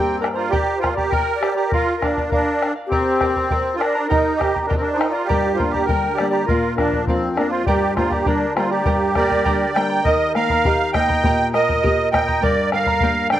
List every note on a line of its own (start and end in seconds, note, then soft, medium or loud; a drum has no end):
0.00 0.49 G2 medium
0.00 0.50 A#3 medium
0.00 0.20 C4 medium
0.00 0.51 D4 medium
0.00 0.19 G4 medium
0.00 0.22 G4 medium
0.00 0.51 G4 medium
0.00 0.20 A#4 medium
0.00 0.20 D5 medium
0.00 0.18 G5 medium
0.00 0.20 G5 medium
0.00 0.21 A#5 medium
0.20 0.28 D4 medium
0.20 0.26 A#4 medium
0.20 0.36 A#4 medium
0.20 0.35 D5 medium
0.20 0.36 G5 medium
0.20 0.34 A#5 medium
0.24 bombo rim medium
0.33 0.51 F4 medium
0.33 0.48 C5 medium
0.33 0.52 D5 soft
0.33 0.51 A#5 medium
0.37 0.51 A#4 soft
0.49 0.79 G4 loud
0.49 0.82 G4 medium
0.49 0.81 A#4 medium
0.49 0.77 D5 medium
0.49 0.80 G5 medium
0.53 0.82 D5 medium
0.53 0.82 A#5 medium
0.53 bombo low medium
0.78 0.95 F4 medium
0.78 0.92 C5 medium
0.78 0.97 G5 medium
0.82 0.97 A#4 medium
0.82 0.96 D5 medium
0.82 0.96 A#5 medium
0.82 bombo rim medium
0.82 bombo low medium
0.93 1.12 G4 medium
0.93 1.08 D5 medium
0.97 1.12 A#4 soft
0.97 1.12 D5 soft
0.97 1.12 A#5 medium
0.97 bombo low medium
1.08 1.42 G4 medium
1.08 1.42 A#4 loud
1.08 1.35 G5 medium
1.12 1.41 A#4 medium
1.12 1.42 D5 medium
1.12 1.41 G5 medium
1.12 1.42 A#5 medium
1.12 bombo low medium
1.35 1.51 D5 medium
1.42 1.54 G4 loud
1.42 1.57 A#4 medium
1.42 1.56 D5 medium
1.42 1.57 G5 medium
1.42 1.56 A#5 medium
1.42 bombo rim medium
1.52 1.67 D5 medium
1.56 1.72 G4 medium
1.56 1.72 A#4 soft
1.56 1.72 D5 soft
1.56 1.72 A#5 soft
1.68 1.96 A#4 medium
1.72 2.03 F4 loud
1.72 2.02 A#4 medium
1.72 2.02 D5 medium
1.72 2.03 F5 medium
1.72 bombo low medium
1.97 2.27 A#4 medium
2.02 2.30 D4 medium
2.02 2.17 A#4 medium
2.02 2.17 D5 medium
2.02 2.16 F5 medium
2.02 bombo rim medium
2.02 bombo low medium
2.17 2.31 D5 soft
2.17 2.31 F5 soft
2.17 bombo low medium
2.28 2.73 D4 loud
2.28 2.71 A#4 medium
2.28 2.60 A#4 medium
2.28 bombo low medium
2.32 2.61 D5 medium
2.32 2.62 F5 medium
2.61 2.76 A#4 medium
2.61 2.76 D5 medium
2.61 2.74 F5 medium
2.61 bombo rim medium
2.76 2.91 D5 soft
2.76 2.91 F5 soft
2.86 3.75 C4 loud
2.86 3.46 G4 medium
2.92 3.21 G4 medium
2.92 3.21 A#4 medium
2.92 3.22 D5 medium
2.92 3.20 G5 medium
2.92 3.22 A#5 medium
2.92 bombo low medium
3.21 3.36 A#4 medium
3.21 3.36 D5 medium
3.21 3.36 G5 medium
3.21 3.36 A#5 medium
3.21 bombo rim soft
3.21 bombo low medium
3.36 3.50 A#4 soft
3.36 3.51 D5 soft
3.36 3.51 A#5 soft
3.36 bombo low soft
3.51 3.81 G4 medium
3.51 3.80 A#4 medium
3.51 3.80 D5 medium
3.51 3.79 G5 medium
3.51 3.81 A#5 medium
3.51 bombo low medium
3.74 3.81 F4 medium
3.74 4.06 A#4 medium
3.74 3.76 C5 soft
3.78 4.07 D4 loud
3.78 3.96 A#4 medium
3.78 3.94 D5 medium
3.78 3.95 G5 medium
3.78 3.94 A#5 medium
3.78 bombo rim medium
3.95 4.09 A#4 soft
3.95 4.10 D5 soft
3.95 4.10 A#5 medium
4.07 4.40 D#4 medium
4.07 4.40 G4 medium
4.07 4.36 A#4 medium
4.07 4.38 G5 medium
4.11 4.39 A#4 medium
4.11 4.39 D#5 medium
4.11 4.40 A#5 medium
4.11 bombo low medium
4.37 4.66 G4 loud
4.37 4.55 A#4 medium
4.37 4.66 D#5 medium
4.37 4.55 G5 medium
4.41 4.54 D#5 medium
4.41 4.53 A#5 medium
4.41 bombo rim medium
4.41 bombo low medium
4.55 4.69 A#4 soft
4.55 4.68 D#5 soft
4.55 4.69 A#5 medium
4.55 bombo low medium
4.66 4.75 D4 medium
4.66 4.99 G4 medium
4.66 4.74 A#4 medium
4.66 4.99 A#4 medium
4.66 4.99 D#5 medium
4.66 4.98 G5 medium
4.70 5.00 A#5 medium
4.70 bombo low medium
4.75 4.82 C4 medium
4.75 4.77 G4 medium
4.75 4.92 A#4 medium
4.81 4.99 D4 medium
4.93 5.13 D#4 medium
4.93 5.09 C5 medium
4.99 5.14 A#4 medium
4.99 5.14 D#5 medium
4.99 5.14 G5 medium
4.99 5.13 A#5 medium
4.99 bombo rim medium
5.10 5.28 F4 medium
5.10 5.25 D5 medium
5.14 5.28 A#4 soft
5.14 5.29 D#5 soft
5.14 5.28 A#5 medium
5.25 5.58 G4 loud
5.25 5.59 G4 medium
5.25 5.54 D5 medium
5.29 5.88 G2 medium
5.29 5.57 A#4 medium
5.29 5.58 D5 medium
5.29 5.57 G5 medium
5.29 5.58 A#5 medium
5.29 bombo low medium
5.54 5.72 F4 medium
5.54 5.70 C5 medium
5.54 5.74 G5 medium
5.59 6.07 G3 medium
5.59 6.07 A#3 soft
5.59 6.08 D4 medium
5.59 5.74 A#4 medium
5.59 5.73 D5 medium
5.59 5.73 A#5 medium
5.59 bombo low medium
5.70 5.86 G4 medium
5.70 5.84 D5 medium
5.70 5.88 A#5 medium
5.74 5.88 A#4 soft
5.74 5.88 D5 soft
5.74 bombo low soft
5.85 6.19 G4 medium
5.85 6.18 A#4 medium
5.85 6.14 G5 medium
5.85 6.17 G5 medium
5.89 6.47 D3 medium
5.89 6.18 D5 medium
5.89 6.18 A#5 medium
5.89 bombo low medium
6.14 6.28 G4 medium
6.14 6.29 D5 medium
6.18 6.43 G3 soft
6.18 6.43 A#3 soft
6.18 6.44 D4 medium
6.18 6.33 A#4 medium
6.18 6.33 D5 medium
6.18 6.33 G5 medium
6.18 6.32 A#5 medium
6.18 bombo rim medium
6.29 6.46 G4 medium
6.29 6.44 D5 medium
6.29 6.48 A#5 medium
6.34 6.48 A#4 soft
6.34 6.49 D5 soft
6.45 6.75 F4 medium
6.45 6.74 A#4 medium
6.45 bombo low medium
6.49 7.07 A#2 medium
6.49 6.77 A#4 medium
6.49 6.78 D5 loud
6.49 6.78 F5 medium
6.76 7.26 F3 medium
6.76 7.27 A#3 medium
6.76 7.05 D4 medium
6.76 7.04 A#4 medium
6.76 6.93 A#4 medium
6.76 6.93 D5 medium
6.76 6.92 F5 medium
6.76 bombo rim medium
6.76 bombo low medium
6.80 7.27 D4 medium
6.93 7.08 D5 soft
6.93 7.08 F5 medium
6.93 bombo low soft
7.05 7.66 F2 medium
7.05 7.38 C4 medium
7.05 7.34 F4 medium
7.05 7.36 A#4 medium
7.05 bombo low medium
7.09 7.37 D5 medium
7.09 7.38 F5 medium
7.36 7.62 F3 medium
7.36 7.62 A#3 soft
7.36 7.51 D4 medium
7.36 7.62 D4 medium
7.36 7.50 A#4 medium
7.36 7.52 A#4 medium
7.36 7.52 D5 medium
7.36 7.52 F5 medium
7.36 bombo rim medium
7.50 7.65 F4 medium
7.50 7.65 C5 medium
7.50 7.67 F5 soft
7.54 7.67 D5 soft
7.66 8.25 G2 medium
7.66 7.94 G4 loud
7.66 7.97 G4 medium
7.66 7.97 A#4 medium
7.66 7.94 D5 medium
7.66 7.97 D5 medium
7.66 7.96 G5 medium
7.66 7.97 A#5 medium
7.66 bombo low medium
7.96 8.45 G3 medium
7.96 8.45 A#3 medium
7.96 8.45 D4 medium
7.96 8.12 F4 medium
7.96 8.13 A#4 medium
7.96 8.10 C5 medium
7.96 8.12 D5 medium
7.96 8.12 G5 medium
7.96 8.11 A#5 medium
7.96 bombo rim soft
7.96 bombo low medium
8.10 8.26 G4 medium
8.10 8.25 D5 medium
8.10 8.26 D5 soft
8.10 8.26 A#5 medium
8.10 bombo low soft
8.14 8.25 A#4 soft
8.25 8.84 D3 medium
8.25 8.54 D4 medium
8.25 8.56 G4 medium
8.25 8.56 A#4 medium
8.25 8.55 A#4 medium
8.25 8.57 D5 medium
8.25 8.55 G5 medium
8.25 8.57 A#5 medium
8.25 bombo low medium
8.56 8.80 G3 medium
8.56 8.81 A#3 medium
8.56 8.81 D4 medium
8.56 8.70 F4 medium
8.56 8.72 A#4 medium
8.56 8.70 C5 medium
8.56 8.71 D5 medium
8.56 8.71 G5 medium
8.56 8.70 A#5 medium
8.56 bombo rim medium
8.70 9.71 G4 medium
8.70 8.84 A#4 soft
8.70 9.13 D5 medium
8.70 8.85 D5 soft
8.70 8.85 A#5 medium
8.86 9.44 G2 medium
8.86 9.16 G4 medium
8.86 9.15 A#4 medium
8.86 9.16 D5 medium
8.86 9.14 G5 medium
8.86 9.16 A#5 medium
8.86 bombo low medium
9.14 9.64 G3 medium
9.14 9.64 A#3 soft
9.14 9.64 D4 medium
9.14 9.71 A#4 medium
9.14 9.31 A#4 medium
9.14 9.78 D5 loud
9.14 9.29 D5 medium
9.14 9.31 G5 medium
9.14 9.29 A#5 medium
9.14 bombo rim medium
9.14 bombo low medium
9.31 9.44 A#4 soft
9.31 9.44 D5 soft
9.31 9.45 A#5 soft
9.31 bombo low soft
9.45 10.04 D3 medium
9.45 9.75 G4 medium
9.45 9.75 A#4 medium
9.45 9.75 D5 loud
9.45 9.74 G5 medium
9.45 9.76 A#5 loud
9.45 bombo low medium
9.74 9.99 G3 soft
9.74 10.00 A#3 soft
9.74 10.00 D4 medium
9.74 9.91 A#4 medium
9.74 10.02 D5 medium
9.74 9.90 D5 medium
9.74 10.05 G5 loud
9.74 9.90 G5 medium
9.74 9.88 A#5 medium
9.74 bombo rim medium
9.90 10.05 A#4 soft
9.90 10.06 D5 medium
9.90 10.05 A#5 medium
10.04 11.21 D#3 medium
10.04 10.35 G4 medium
10.04 10.32 A#4 medium
10.04 10.35 A#4 medium
10.04 10.33 D#5 loud
10.04 10.35 D#5 medium
10.04 10.34 G5 medium
10.04 10.35 A#5 medium
10.04 bombo low medium
10.33 10.64 A#3 medium
10.33 10.66 A#4 medium
10.33 10.50 A#4 medium
10.33 10.50 D#5 medium
10.33 10.90 F5 loud
10.33 10.50 G5 medium
10.33 10.50 A#5 medium
10.33 bombo rim soft
10.50 10.65 A#4 soft
10.50 10.65 D#5 medium
10.50 10.65 A#5 medium
10.50 bombo low medium
10.65 10.95 G4 medium
10.65 10.94 G4 medium
10.65 10.94 A#4 medium
10.65 10.94 D#5 medium
10.65 10.93 G5 medium
10.65 10.94 A#5 medium
10.65 bombo low medium
10.93 11.23 A#3 medium
10.93 11.09 A#4 medium
10.93 11.49 D#5 loud
10.93 11.09 D#5 medium
10.93 11.49 G5 loud
10.93 11.09 G5 medium
10.93 11.08 A#5 medium
10.93 bombo rim medium
10.93 bombo low medium
11.09 11.24 A#4 soft
11.09 11.24 D#5 medium
11.09 11.24 A#5 medium
11.09 bombo low medium
11.23 12.39 A#2 medium
11.23 11.54 G4 loud
11.23 11.53 A#4 medium
11.23 11.52 D#5 medium
11.23 11.52 G5 medium
11.23 11.53 A#5 loud
11.23 bombo low medium
11.53 11.83 A#3 medium
11.53 12.09 A#4 medium
11.53 11.69 A#4 medium
11.53 11.68 D#5 medium
11.53 12.09 D#5 loud
11.53 11.68 G5 medium
11.53 11.67 A#5 medium
11.53 bombo rim medium
11.68 11.82 A#4 soft
11.68 11.83 D#5 soft
11.68 11.83 A#5 soft
11.68 bombo low medium
11.83 12.13 G4 medium
11.83 12.12 G4 medium
11.83 12.11 A#4 medium
11.83 12.11 D#5 medium
11.83 12.11 G5 medium
11.83 12.12 A#5 medium
11.83 bombo low medium
12.12 12.42 A#3 medium
12.12 12.27 A#4 medium
12.12 12.40 D#5 loud
12.12 12.28 D#5 medium
12.12 12.43 G5 loud
12.12 12.27 G5 medium
12.12 12.27 A#5 medium
12.12 bombo rim medium
12.12 bombo low medium
12.28 12.42 A#4 soft
12.28 12.43 D#5 medium
12.28 12.42 A#5 medium
12.28 bombo low medium
12.42 13.40 G2 medium
12.42 12.72 G4 medium
12.42 12.72 A#4 loud
12.42 12.70 A#4 medium
12.42 12.70 D5 loud
12.42 12.72 D5 loud
12.42 12.72 G5 medium
12.42 12.72 A#5 medium
12.42 bombo low medium
12.72 13.01 D3 medium
12.72 12.87 A#4 medium
12.72 13.28 A#4 medium
12.72 12.87 D5 medium
12.72 13.28 F5 loud
12.72 12.87 G5 medium
12.72 12.86 A#5 medium
12.72 bombo rim medium
12.86 13.02 A#4 soft
12.86 13.02 D5 soft
12.86 13.02 A#5 medium
12.86 bombo low medium
13.00 13.31 A#3 medium
13.00 13.32 G4 medium
13.00 13.31 A#4 medium
13.00 13.32 D5 medium
13.00 13.31 G5 medium
13.00 13.32 A#5 medium
13.00 bombo low medium
13.30 13.40 D3 medium
13.30 13.40 A#4 medium
13.30 13.40 D5 loud
13.30 13.40 D5 medium
13.30 13.40 G5 loud
13.30 13.40 G5 medium
13.30 13.40 A#5 medium
13.30 bombo rim medium